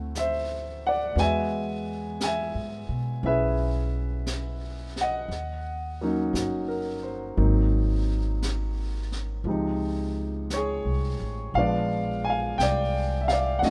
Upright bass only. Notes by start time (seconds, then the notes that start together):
Already playing: D2
1.15 E2
2.55 G#2
2.89 B2
3.23 B1
5.28 D#2
6.33 G1
7.37 G#1
9.44 C#2
10.85 C2
11.20 A1
11.54 A#1
12.58 C2
13.62 D#2